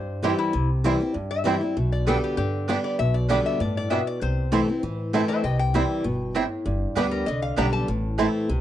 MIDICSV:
0, 0, Header, 1, 6, 480
1, 0, Start_track
1, 0, Key_signature, 0, "major"
1, 0, Tempo, 305810
1, 851, Time_signature, 4, 2, 24, 8
1, 13511, End_track
2, 0, Start_track
2, 0, Title_t, "Resonator guitar played with a steel bar"
2, 0, Program_c, 0, 25
2, 0, Note_on_c, 0, 72, 85
2, 342, Note_off_c, 0, 72, 0
2, 379, Note_on_c, 0, 67, 82
2, 604, Note_on_c, 0, 64, 103
2, 617, Note_off_c, 0, 67, 0
2, 1079, Note_off_c, 0, 64, 0
2, 2051, Note_on_c, 0, 76, 98
2, 2992, Note_off_c, 0, 76, 0
2, 3020, Note_on_c, 0, 74, 70
2, 3247, Note_off_c, 0, 74, 0
2, 3253, Note_on_c, 0, 69, 82
2, 3498, Note_off_c, 0, 69, 0
2, 3511, Note_on_c, 0, 67, 85
2, 3704, Note_off_c, 0, 67, 0
2, 3723, Note_on_c, 0, 67, 115
2, 4197, Note_off_c, 0, 67, 0
2, 4460, Note_on_c, 0, 74, 88
2, 4686, Note_off_c, 0, 74, 0
2, 4692, Note_on_c, 0, 76, 91
2, 4932, Note_on_c, 0, 74, 91
2, 4939, Note_off_c, 0, 76, 0
2, 5154, Note_off_c, 0, 74, 0
2, 5173, Note_on_c, 0, 74, 88
2, 5420, Note_off_c, 0, 74, 0
2, 5428, Note_on_c, 0, 76, 90
2, 5653, Note_off_c, 0, 76, 0
2, 5667, Note_on_c, 0, 74, 93
2, 5903, Note_off_c, 0, 74, 0
2, 5922, Note_on_c, 0, 74, 105
2, 6128, Note_on_c, 0, 76, 86
2, 6140, Note_off_c, 0, 74, 0
2, 6377, Note_off_c, 0, 76, 0
2, 6391, Note_on_c, 0, 74, 92
2, 6615, Note_off_c, 0, 74, 0
2, 6628, Note_on_c, 0, 72, 98
2, 8021, Note_off_c, 0, 72, 0
2, 8290, Note_on_c, 0, 72, 83
2, 8301, Note_on_c, 0, 76, 102
2, 8527, Note_off_c, 0, 76, 0
2, 8530, Note_off_c, 0, 72, 0
2, 8533, Note_on_c, 0, 75, 89
2, 8544, Note_on_c, 0, 79, 84
2, 8761, Note_off_c, 0, 79, 0
2, 8770, Note_off_c, 0, 75, 0
2, 8780, Note_on_c, 0, 79, 98
2, 10179, Note_off_c, 0, 79, 0
2, 11166, Note_on_c, 0, 70, 97
2, 11398, Note_off_c, 0, 70, 0
2, 11399, Note_on_c, 0, 75, 103
2, 11646, Note_off_c, 0, 75, 0
2, 11652, Note_on_c, 0, 77, 94
2, 11880, Note_off_c, 0, 77, 0
2, 11892, Note_on_c, 0, 82, 99
2, 12121, Note_off_c, 0, 82, 0
2, 12127, Note_on_c, 0, 81, 101
2, 12356, Note_off_c, 0, 81, 0
2, 13511, End_track
3, 0, Start_track
3, 0, Title_t, "Mandolin"
3, 0, Program_c, 1, 25
3, 362, Note_on_c, 1, 60, 76
3, 372, Note_on_c, 1, 64, 85
3, 376, Note_on_c, 1, 72, 101
3, 382, Note_on_c, 1, 79, 86
3, 514, Note_off_c, 1, 60, 0
3, 519, Note_off_c, 1, 64, 0
3, 521, Note_off_c, 1, 72, 0
3, 524, Note_off_c, 1, 79, 0
3, 1322, Note_on_c, 1, 60, 82
3, 1328, Note_on_c, 1, 64, 90
3, 1335, Note_on_c, 1, 72, 85
3, 1343, Note_on_c, 1, 79, 96
3, 1475, Note_off_c, 1, 60, 0
3, 1478, Note_off_c, 1, 64, 0
3, 1482, Note_off_c, 1, 72, 0
3, 1486, Note_off_c, 1, 79, 0
3, 2280, Note_on_c, 1, 60, 90
3, 2287, Note_on_c, 1, 64, 101
3, 2296, Note_on_c, 1, 72, 88
3, 2300, Note_on_c, 1, 79, 105
3, 2436, Note_off_c, 1, 60, 0
3, 2439, Note_off_c, 1, 64, 0
3, 2444, Note_off_c, 1, 72, 0
3, 2446, Note_off_c, 1, 79, 0
3, 3242, Note_on_c, 1, 59, 89
3, 3246, Note_on_c, 1, 67, 89
3, 3254, Note_on_c, 1, 74, 94
3, 3259, Note_on_c, 1, 79, 107
3, 3398, Note_off_c, 1, 59, 0
3, 3400, Note_off_c, 1, 67, 0
3, 3404, Note_off_c, 1, 74, 0
3, 3407, Note_off_c, 1, 79, 0
3, 4203, Note_on_c, 1, 59, 88
3, 4213, Note_on_c, 1, 67, 83
3, 4216, Note_on_c, 1, 74, 101
3, 4223, Note_on_c, 1, 79, 85
3, 4359, Note_off_c, 1, 59, 0
3, 4364, Note_off_c, 1, 67, 0
3, 4366, Note_off_c, 1, 74, 0
3, 4369, Note_off_c, 1, 79, 0
3, 5158, Note_on_c, 1, 59, 86
3, 5167, Note_on_c, 1, 67, 102
3, 5173, Note_on_c, 1, 74, 108
3, 5178, Note_on_c, 1, 79, 115
3, 5317, Note_off_c, 1, 59, 0
3, 5322, Note_off_c, 1, 67, 0
3, 5325, Note_off_c, 1, 74, 0
3, 5327, Note_off_c, 1, 79, 0
3, 6123, Note_on_c, 1, 59, 89
3, 6129, Note_on_c, 1, 67, 81
3, 6136, Note_on_c, 1, 74, 81
3, 6141, Note_on_c, 1, 79, 89
3, 6280, Note_off_c, 1, 59, 0
3, 6283, Note_off_c, 1, 67, 0
3, 6287, Note_off_c, 1, 74, 0
3, 6289, Note_off_c, 1, 79, 0
3, 7091, Note_on_c, 1, 57, 96
3, 7100, Note_on_c, 1, 64, 90
3, 7108, Note_on_c, 1, 72, 115
3, 7114, Note_on_c, 1, 81, 101
3, 7244, Note_off_c, 1, 57, 0
3, 7248, Note_off_c, 1, 64, 0
3, 7252, Note_off_c, 1, 72, 0
3, 7255, Note_off_c, 1, 81, 0
3, 8057, Note_on_c, 1, 57, 79
3, 8064, Note_on_c, 1, 64, 87
3, 8070, Note_on_c, 1, 72, 98
3, 8077, Note_on_c, 1, 81, 89
3, 8207, Note_off_c, 1, 57, 0
3, 8210, Note_off_c, 1, 64, 0
3, 8213, Note_off_c, 1, 72, 0
3, 8216, Note_off_c, 1, 81, 0
3, 9013, Note_on_c, 1, 60, 91
3, 9023, Note_on_c, 1, 64, 90
3, 9026, Note_on_c, 1, 72, 92
3, 9035, Note_on_c, 1, 79, 95
3, 9164, Note_off_c, 1, 60, 0
3, 9169, Note_off_c, 1, 64, 0
3, 9170, Note_off_c, 1, 72, 0
3, 9175, Note_off_c, 1, 79, 0
3, 9961, Note_on_c, 1, 60, 100
3, 9968, Note_on_c, 1, 64, 106
3, 9974, Note_on_c, 1, 72, 103
3, 9981, Note_on_c, 1, 79, 97
3, 10117, Note_off_c, 1, 60, 0
3, 10120, Note_off_c, 1, 64, 0
3, 10123, Note_off_c, 1, 72, 0
3, 10127, Note_off_c, 1, 79, 0
3, 10915, Note_on_c, 1, 59, 88
3, 10926, Note_on_c, 1, 67, 96
3, 10934, Note_on_c, 1, 74, 99
3, 10939, Note_on_c, 1, 79, 104
3, 11072, Note_off_c, 1, 59, 0
3, 11077, Note_off_c, 1, 67, 0
3, 11081, Note_off_c, 1, 74, 0
3, 11084, Note_off_c, 1, 79, 0
3, 11873, Note_on_c, 1, 59, 91
3, 11884, Note_on_c, 1, 67, 98
3, 11887, Note_on_c, 1, 74, 103
3, 11896, Note_on_c, 1, 79, 98
3, 12030, Note_off_c, 1, 59, 0
3, 12035, Note_off_c, 1, 67, 0
3, 12036, Note_off_c, 1, 74, 0
3, 12041, Note_off_c, 1, 79, 0
3, 12837, Note_on_c, 1, 57, 90
3, 12844, Note_on_c, 1, 64, 87
3, 12853, Note_on_c, 1, 72, 95
3, 12860, Note_on_c, 1, 81, 94
3, 12990, Note_off_c, 1, 57, 0
3, 12993, Note_off_c, 1, 64, 0
3, 12998, Note_off_c, 1, 72, 0
3, 13001, Note_off_c, 1, 81, 0
3, 13511, End_track
4, 0, Start_track
4, 0, Title_t, "Five-string banjo"
4, 0, Program_c, 2, 105
4, 378, Note_on_c, 2, 55, 67
4, 386, Note_on_c, 2, 60, 60
4, 388, Note_on_c, 2, 64, 60
4, 484, Note_off_c, 2, 55, 0
4, 487, Note_off_c, 2, 60, 0
4, 489, Note_off_c, 2, 64, 0
4, 1344, Note_on_c, 2, 55, 56
4, 1351, Note_on_c, 2, 60, 66
4, 1360, Note_on_c, 2, 64, 62
4, 1449, Note_off_c, 2, 55, 0
4, 1453, Note_off_c, 2, 60, 0
4, 1455, Note_off_c, 2, 64, 0
4, 2307, Note_on_c, 2, 55, 64
4, 2315, Note_on_c, 2, 60, 64
4, 2320, Note_on_c, 2, 64, 62
4, 2412, Note_off_c, 2, 55, 0
4, 2414, Note_off_c, 2, 60, 0
4, 2418, Note_off_c, 2, 64, 0
4, 3266, Note_on_c, 2, 55, 66
4, 3269, Note_on_c, 2, 59, 67
4, 3273, Note_on_c, 2, 62, 62
4, 3372, Note_off_c, 2, 55, 0
4, 3373, Note_off_c, 2, 59, 0
4, 3376, Note_off_c, 2, 62, 0
4, 4226, Note_on_c, 2, 55, 65
4, 4232, Note_on_c, 2, 59, 66
4, 4235, Note_on_c, 2, 62, 69
4, 4333, Note_off_c, 2, 55, 0
4, 4335, Note_off_c, 2, 59, 0
4, 4337, Note_off_c, 2, 62, 0
4, 5182, Note_on_c, 2, 55, 60
4, 5189, Note_on_c, 2, 59, 70
4, 5190, Note_on_c, 2, 62, 61
4, 5292, Note_off_c, 2, 55, 0
4, 5294, Note_off_c, 2, 59, 0
4, 5295, Note_off_c, 2, 62, 0
4, 6150, Note_on_c, 2, 55, 60
4, 6158, Note_on_c, 2, 59, 60
4, 6168, Note_on_c, 2, 62, 62
4, 6258, Note_off_c, 2, 55, 0
4, 6259, Note_off_c, 2, 59, 0
4, 6261, Note_off_c, 2, 62, 0
4, 7107, Note_on_c, 2, 57, 57
4, 7117, Note_on_c, 2, 64, 59
4, 7118, Note_on_c, 2, 60, 66
4, 7215, Note_off_c, 2, 57, 0
4, 7218, Note_off_c, 2, 60, 0
4, 7219, Note_off_c, 2, 64, 0
4, 8068, Note_on_c, 2, 57, 66
4, 8074, Note_on_c, 2, 60, 66
4, 8080, Note_on_c, 2, 64, 66
4, 8174, Note_off_c, 2, 57, 0
4, 8178, Note_off_c, 2, 60, 0
4, 8180, Note_off_c, 2, 64, 0
4, 9022, Note_on_c, 2, 55, 69
4, 9031, Note_on_c, 2, 60, 60
4, 9032, Note_on_c, 2, 64, 65
4, 9131, Note_off_c, 2, 55, 0
4, 9134, Note_off_c, 2, 60, 0
4, 9136, Note_off_c, 2, 64, 0
4, 9976, Note_on_c, 2, 55, 61
4, 9983, Note_on_c, 2, 60, 67
4, 9991, Note_on_c, 2, 64, 64
4, 10087, Note_off_c, 2, 55, 0
4, 10091, Note_off_c, 2, 60, 0
4, 10093, Note_off_c, 2, 64, 0
4, 10935, Note_on_c, 2, 55, 62
4, 10942, Note_on_c, 2, 59, 70
4, 10949, Note_on_c, 2, 62, 73
4, 11045, Note_off_c, 2, 55, 0
4, 11048, Note_off_c, 2, 59, 0
4, 11050, Note_off_c, 2, 62, 0
4, 11894, Note_on_c, 2, 55, 64
4, 11905, Note_on_c, 2, 59, 66
4, 11907, Note_on_c, 2, 62, 61
4, 12003, Note_off_c, 2, 55, 0
4, 12006, Note_off_c, 2, 59, 0
4, 12009, Note_off_c, 2, 62, 0
4, 12848, Note_on_c, 2, 57, 62
4, 12855, Note_on_c, 2, 64, 66
4, 12857, Note_on_c, 2, 60, 66
4, 12958, Note_off_c, 2, 57, 0
4, 12960, Note_off_c, 2, 60, 0
4, 12961, Note_off_c, 2, 64, 0
4, 13511, End_track
5, 0, Start_track
5, 0, Title_t, "Steel-string acoustic guitar"
5, 0, Program_c, 3, 25
5, 0, Note_on_c, 3, 43, 74
5, 353, Note_on_c, 3, 52, 79
5, 367, Note_on_c, 3, 55, 99
5, 372, Note_on_c, 3, 60, 91
5, 380, Note_on_c, 3, 64, 93
5, 799, Note_off_c, 3, 43, 0
5, 820, Note_off_c, 3, 52, 0
5, 827, Note_off_c, 3, 55, 0
5, 829, Note_off_c, 3, 60, 0
5, 833, Note_off_c, 3, 64, 0
5, 834, Note_on_c, 3, 48, 89
5, 1322, Note_on_c, 3, 52, 106
5, 1329, Note_on_c, 3, 55, 103
5, 1340, Note_on_c, 3, 60, 106
5, 1346, Note_on_c, 3, 64, 99
5, 1553, Note_off_c, 3, 64, 0
5, 1568, Note_off_c, 3, 52, 0
5, 1571, Note_off_c, 3, 55, 0
5, 1572, Note_on_c, 3, 64, 62
5, 1577, Note_off_c, 3, 60, 0
5, 1600, Note_on_c, 3, 60, 52
5, 1760, Note_off_c, 3, 48, 0
5, 1792, Note_on_c, 3, 43, 80
5, 1800, Note_off_c, 3, 64, 0
5, 1814, Note_off_c, 3, 60, 0
5, 2259, Note_on_c, 3, 52, 91
5, 2276, Note_on_c, 3, 55, 101
5, 2283, Note_on_c, 3, 60, 91
5, 2285, Note_on_c, 3, 64, 97
5, 2505, Note_off_c, 3, 64, 0
5, 2518, Note_off_c, 3, 52, 0
5, 2523, Note_on_c, 3, 64, 53
5, 2526, Note_off_c, 3, 55, 0
5, 2530, Note_off_c, 3, 60, 0
5, 2552, Note_on_c, 3, 60, 49
5, 2720, Note_off_c, 3, 43, 0
5, 2757, Note_off_c, 3, 64, 0
5, 2771, Note_off_c, 3, 60, 0
5, 2773, Note_on_c, 3, 47, 86
5, 3245, Note_on_c, 3, 50, 86
5, 3261, Note_on_c, 3, 55, 98
5, 3272, Note_on_c, 3, 59, 105
5, 3281, Note_on_c, 3, 67, 104
5, 3691, Note_off_c, 3, 47, 0
5, 3710, Note_off_c, 3, 50, 0
5, 3717, Note_off_c, 3, 55, 0
5, 3723, Note_off_c, 3, 59, 0
5, 3727, Note_off_c, 3, 67, 0
5, 3738, Note_on_c, 3, 50, 78
5, 4196, Note_off_c, 3, 50, 0
5, 4215, Note_on_c, 3, 50, 86
5, 4221, Note_on_c, 3, 55, 93
5, 4228, Note_on_c, 3, 59, 103
5, 4239, Note_on_c, 3, 67, 100
5, 4675, Note_off_c, 3, 50, 0
5, 4678, Note_off_c, 3, 55, 0
5, 4682, Note_off_c, 3, 59, 0
5, 4687, Note_off_c, 3, 67, 0
5, 4698, Note_on_c, 3, 47, 90
5, 5175, Note_on_c, 3, 50, 93
5, 5184, Note_on_c, 3, 55, 103
5, 5194, Note_on_c, 3, 59, 99
5, 5206, Note_on_c, 3, 67, 98
5, 5614, Note_off_c, 3, 47, 0
5, 5635, Note_off_c, 3, 50, 0
5, 5640, Note_off_c, 3, 55, 0
5, 5645, Note_off_c, 3, 59, 0
5, 5651, Note_off_c, 3, 67, 0
5, 5653, Note_on_c, 3, 45, 89
5, 6115, Note_off_c, 3, 45, 0
5, 6132, Note_on_c, 3, 47, 87
5, 6594, Note_off_c, 3, 47, 0
5, 6616, Note_on_c, 3, 48, 85
5, 7093, Note_on_c, 3, 52, 97
5, 7099, Note_on_c, 3, 57, 99
5, 7108, Note_on_c, 3, 60, 95
5, 7119, Note_on_c, 3, 64, 97
5, 7321, Note_off_c, 3, 64, 0
5, 7337, Note_off_c, 3, 52, 0
5, 7340, Note_off_c, 3, 57, 0
5, 7340, Note_on_c, 3, 64, 59
5, 7344, Note_off_c, 3, 60, 0
5, 7368, Note_on_c, 3, 60, 52
5, 7533, Note_off_c, 3, 48, 0
5, 7567, Note_off_c, 3, 64, 0
5, 7581, Note_off_c, 3, 60, 0
5, 7582, Note_on_c, 3, 52, 75
5, 8037, Note_off_c, 3, 52, 0
5, 8056, Note_on_c, 3, 52, 91
5, 8063, Note_on_c, 3, 57, 101
5, 8072, Note_on_c, 3, 60, 100
5, 8087, Note_on_c, 3, 64, 97
5, 8515, Note_off_c, 3, 52, 0
5, 8519, Note_off_c, 3, 57, 0
5, 8523, Note_off_c, 3, 60, 0
5, 8531, Note_off_c, 3, 64, 0
5, 8537, Note_on_c, 3, 48, 77
5, 9010, Note_on_c, 3, 52, 98
5, 9021, Note_on_c, 3, 55, 92
5, 9027, Note_on_c, 3, 60, 90
5, 9034, Note_on_c, 3, 64, 107
5, 9451, Note_off_c, 3, 48, 0
5, 9471, Note_off_c, 3, 52, 0
5, 9476, Note_off_c, 3, 55, 0
5, 9479, Note_off_c, 3, 60, 0
5, 9483, Note_off_c, 3, 64, 0
5, 9485, Note_on_c, 3, 47, 83
5, 9948, Note_off_c, 3, 47, 0
5, 9980, Note_on_c, 3, 45, 90
5, 10435, Note_off_c, 3, 45, 0
5, 10446, Note_on_c, 3, 43, 92
5, 10923, Note_on_c, 3, 50, 101
5, 10932, Note_on_c, 3, 55, 107
5, 10940, Note_on_c, 3, 59, 107
5, 10958, Note_on_c, 3, 67, 111
5, 11363, Note_off_c, 3, 43, 0
5, 11385, Note_off_c, 3, 50, 0
5, 11389, Note_off_c, 3, 55, 0
5, 11393, Note_off_c, 3, 59, 0
5, 11402, Note_off_c, 3, 67, 0
5, 11429, Note_on_c, 3, 50, 86
5, 11870, Note_off_c, 3, 50, 0
5, 11889, Note_on_c, 3, 50, 93
5, 11899, Note_on_c, 3, 55, 93
5, 11904, Note_on_c, 3, 59, 101
5, 11911, Note_on_c, 3, 67, 97
5, 12346, Note_off_c, 3, 50, 0
5, 12351, Note_off_c, 3, 55, 0
5, 12353, Note_off_c, 3, 59, 0
5, 12357, Note_off_c, 3, 67, 0
5, 12371, Note_on_c, 3, 45, 89
5, 12850, Note_on_c, 3, 52, 86
5, 12858, Note_on_c, 3, 57, 97
5, 12866, Note_on_c, 3, 60, 88
5, 12876, Note_on_c, 3, 64, 110
5, 13281, Note_off_c, 3, 45, 0
5, 13304, Note_off_c, 3, 52, 0
5, 13308, Note_off_c, 3, 57, 0
5, 13312, Note_off_c, 3, 60, 0
5, 13318, Note_off_c, 3, 64, 0
5, 13332, Note_on_c, 3, 48, 92
5, 13511, Note_off_c, 3, 48, 0
5, 13511, End_track
6, 0, Start_track
6, 0, Title_t, "Upright bass"
6, 0, Program_c, 4, 32
6, 0, Note_on_c, 4, 43, 78
6, 486, Note_off_c, 4, 43, 0
6, 857, Note_on_c, 4, 36, 94
6, 1448, Note_off_c, 4, 36, 0
6, 1814, Note_on_c, 4, 43, 78
6, 2407, Note_off_c, 4, 43, 0
6, 2775, Note_on_c, 4, 35, 97
6, 3368, Note_off_c, 4, 35, 0
6, 3727, Note_on_c, 4, 43, 75
6, 4322, Note_off_c, 4, 43, 0
6, 4700, Note_on_c, 4, 35, 90
6, 5291, Note_off_c, 4, 35, 0
6, 5654, Note_on_c, 4, 43, 74
6, 6248, Note_off_c, 4, 43, 0
6, 6621, Note_on_c, 4, 36, 95
6, 7212, Note_off_c, 4, 36, 0
6, 7582, Note_on_c, 4, 45, 80
6, 8172, Note_off_c, 4, 45, 0
6, 8535, Note_on_c, 4, 36, 104
6, 9127, Note_off_c, 4, 36, 0
6, 9487, Note_on_c, 4, 31, 80
6, 10080, Note_off_c, 4, 31, 0
6, 10448, Note_on_c, 4, 31, 99
6, 10745, Note_off_c, 4, 31, 0
6, 10924, Note_on_c, 4, 38, 85
6, 11335, Note_off_c, 4, 38, 0
6, 11409, Note_on_c, 4, 36, 84
6, 11817, Note_off_c, 4, 36, 0
6, 11893, Note_on_c, 4, 35, 87
6, 12299, Note_off_c, 4, 35, 0
6, 12378, Note_on_c, 4, 33, 94
6, 12964, Note_off_c, 4, 33, 0
6, 13327, Note_on_c, 4, 36, 95
6, 13511, Note_off_c, 4, 36, 0
6, 13511, End_track
0, 0, End_of_file